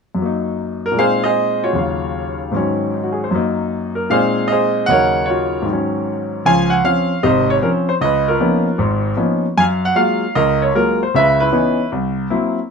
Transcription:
0.15 0.95 F#2 soft
0.15 0.97 F#3 soft
0.22 0.99 A#3 soft
0.22 1.01 D#4 medium
0.86 0.99 A#4 medium
0.92 1.73 A#2 soft
0.92 1.75 G#3 soft
0.99 1.76 C4 soft
0.99 1.78 D#4 soft
0.99 1.24 G#4 medium
0.99 1.24 C5 medium
0.99 1.25 F5 medium
1.23 1.73 G#4 medium
1.23 1.73 C5 medium
1.23 1.64 D#5 medium
1.64 2.38 F4 soft
1.64 2.37 F#4 soft
1.64 2.37 C#5 medium
1.73 2.53 D#2 soft
1.73 2.54 C#3 soft
1.73 2.54 F#3 soft
1.78 2.55 F5 medium
2.52 3.31 G#2 medium
2.52 3.32 D#3 soft
2.52 3.31 F#3 soft
2.56 3.33 C#4 medium
2.94 3.11 D#4 soft
3.03 3.20 F#4 soft
3.12 3.25 G#4 soft
3.24 3.37 C5 soft
3.31 4.10 F#2 medium
3.31 4.10 F#3 soft
3.31 4.11 A#3 soft
3.36 4.10 D#4 medium
3.95 4.08 A#4 medium
4.10 4.88 A#2 medium
4.10 4.88 G#3 medium
4.10 4.89 C4 medium
4.10 4.88 D#4 medium
4.10 4.51 G#4 medium
4.10 4.51 C5 medium
4.10 4.51 F5 medium
4.48 4.89 D#5 medium
4.52 4.87 G#4 medium
4.52 4.87 C5 medium
4.86 5.66 D#2 soft
4.86 5.67 C#3 soft
4.86 5.67 F#3 soft
4.86 5.67 D#4 medium
4.86 5.28 F#5 medium
4.91 5.64 A#4 medium
4.91 5.24 C#5 medium
5.26 5.63 C#5 medium
5.30 5.65 F4 soft
5.30 5.65 F#4 medium
5.62 6.42 G#2 medium
5.62 6.44 D#3 medium
5.69 6.46 F#3 soft
5.69 6.48 C#4 medium
6.45 6.79 C#2 medium
6.45 6.79 F3 medium
6.45 6.83 F5 medium
6.45 6.72 G#5 loud
6.70 6.84 F#5 medium
6.84 7.11 F3 soft
6.84 7.11 C4 soft
6.84 7.11 C#4 soft
6.84 7.25 F5 medium
7.23 7.57 G#1 medium
7.23 7.57 C3 medium
7.23 7.87 C5 medium
7.23 7.47 D#5 medium
7.50 7.55 C#5 medium
7.62 7.89 F3 soft
7.62 7.89 C4 soft
7.62 7.90 C#4 medium
7.62 7.68 A#4 medium
7.89 7.94 C5 medium
8.01 8.35 C#2 medium
8.01 8.77 B4 medium
8.01 8.28 D#5 medium
8.28 9.03 F4 soft
8.28 8.76 A#4 medium
8.40 8.67 F3 medium
8.40 8.67 A#3 medium
8.40 8.67 B3 soft
8.40 8.68 C#4 soft
8.40 8.68 D#4 medium
8.78 9.13 G#1 medium
8.78 9.13 G#2 medium
9.17 9.45 F3 soft
9.17 9.45 A#3 soft
9.17 9.45 B3 soft
9.17 9.45 C#4 soft
9.17 9.45 D#4 medium
9.57 9.91 F#2 medium
9.57 9.94 F5 medium
9.57 9.63 G#5 loud
9.85 9.98 F#5 medium
9.95 10.23 F#3 medium
9.95 10.23 G#3 soft
9.95 10.23 A#3 soft
9.95 10.24 F4 medium
9.95 10.36 F5 medium
10.35 10.69 C#2 medium
10.35 10.74 A#4 medium
10.35 10.62 D#5 medium
10.62 10.75 C#5 medium
10.75 11.02 F#3 medium
10.75 11.02 G#3 soft
10.75 11.02 A#3 soft
10.75 11.02 F4 medium
10.75 10.99 A#4 medium
11.03 11.14 C5 medium
11.14 11.48 C#2 medium
11.14 11.48 C#3 medium
11.14 11.39 B4 medium
11.14 11.41 E5 medium
11.40 11.89 E4 medium
11.40 11.88 B4 medium
11.52 11.80 E3 medium
11.52 11.80 B3 soft
11.52 11.80 C#4 soft
11.52 11.80 D#4 medium
11.92 12.26 C2 medium
12.30 12.58 F#3 soft
12.30 12.58 A#3 soft
12.30 12.58 C4 soft
12.30 12.58 E4 medium

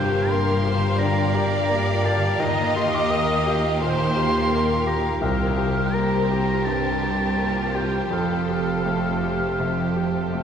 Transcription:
0.00 2.37 G1 medium
0.00 0.96 G2 medium
0.00 2.37 G2 medium
0.00 2.43 G2 medium
0.00 0.45 G3 soft
0.00 0.98 A#3 soft
0.00 0.51 F4 soft
0.00 0.51 G4 soft
0.00 5.19 G4 medium
0.00 5.19 A#4 medium
0.00 0.30 C5 medium
0.00 5.18 F5 medium
0.00 0.32 G5 medium
0.05 1.45 G4 medium
0.29 0.85 A#3 soft
0.29 0.64 A#4 medium
0.29 1.68 A#4 medium
0.29 1.00 C6 loud
0.53 1.92 F4 medium
0.65 1.20 G4 soft
0.65 0.99 C5 medium
0.76 1.22 D3 medium
0.99 1.56 D3 soft
0.99 2.63 A#3 medium
0.99 2.41 D5 medium
0.99 2.05 A#5 medium
1.23 2.16 D3 soft
1.34 1.91 G4 medium
1.46 2.86 G4 soft
1.69 2.26 A#3 soft
1.69 3.10 A#4 medium
1.93 3.33 F4 soft
2.04 2.40 G4 medium
2.04 2.42 A5 medium
2.17 2.43 D3 soft
2.40 3.77 D#2 medium
2.40 5.18 D#2 medium
2.40 5.19 D#2 medium
2.40 5.25 D#3 medium
2.40 3.82 D#5 medium
2.40 2.76 A#5 medium
2.64 3.81 A#3 soft
2.76 3.32 G4 soft
2.76 2.96 C6 medium
2.87 4.27 G4 medium
2.95 3.13 D6 medium
3.10 3.67 A#3 soft
3.10 4.50 A#4 medium
3.10 3.57 D#6 loud
3.34 4.74 F4 soft
3.46 4.03 G4 soft
3.58 4.04 D#4 soft
3.81 4.38 A#2 soft
3.81 5.44 A#3 medium
3.81 4.52 C5 medium
3.81 4.89 C6 loud
4.05 4.97 D#4 soft
4.16 4.73 G4 soft
4.28 5.68 G4 medium
4.51 5.08 A#3 soft
4.51 5.93 A#4 medium
4.51 5.21 A#4 medium
4.76 8.66 F4 medium
4.87 5.22 G4 soft
4.87 5.21 A#5 medium
4.99 5.25 D#4 soft
5.21 6.62 C2 medium
5.21 8.08 C2 medium
5.21 8.15 C3 medium
5.21 10.43 G4 medium
5.21 8.08 A#4 medium
5.21 5.93 A#4 medium
5.21 10.43 C5 medium
5.21 5.95 F5 medium
5.45 6.65 A#3 soft
5.58 6.16 G4 soft
5.70 7.13 G4 soft
5.93 6.52 A#3 soft
5.93 6.30 G4 medium
5.93 7.37 A#4 medium
5.93 6.67 A#5 medium
6.18 7.61 C4 soft
6.31 6.66 F4 medium
6.31 6.88 G4 soft
6.42 6.88 G3 soft
6.65 7.24 G2 soft
6.65 8.15 A#3 soft
6.65 7.02 A#4 medium
6.65 7.77 A5 medium
6.90 7.86 G3 soft
7.02 7.39 G4 medium
7.02 7.61 G4 soft
7.14 9.09 G4 soft
7.38 7.97 A#3 soft
7.38 8.12 F4 medium
7.38 8.15 A#4 soft
7.63 8.35 C4 soft
7.75 8.12 G4 soft
7.75 8.12 G5 medium
7.87 10.43 G3 soft
8.11 10.43 F1 medium
8.11 9.55 F2 soft
8.11 10.43 F2 medium
8.11 10.43 F3 medium
8.11 10.43 A4 medium
8.11 10.43 A4 soft
8.11 10.43 F5 medium
8.36 9.58 C4 soft
8.49 9.08 G4 soft
8.61 10.08 A4 soft
8.86 9.45 A3 soft
8.86 10.32 C5 soft
9.10 10.43 G4 soft
9.23 9.82 G4 soft
9.35 9.83 A3 soft
9.59 10.19 C3 soft
9.59 10.43 C4 soft
9.84 10.43 A3 soft
9.96 10.43 G4 soft
10.09 10.43 A4 soft
10.34 10.43 A3 soft
10.34 10.43 C5 soft

